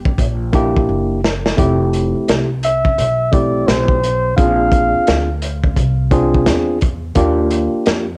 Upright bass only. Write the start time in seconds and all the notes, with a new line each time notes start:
Already playing: G1
0.18 A#1
0.89 F#1
1.58 F1
2.15 muted upright bass stroke
2.28 C2
2.98 B1
3.68 B1
4.38 A#1
4.95 muted upright bass stroke
5.08 D2
5.77 C2
6.47 E2
7.16 D#2
7.73 muted upright bass stroke
7.87 F2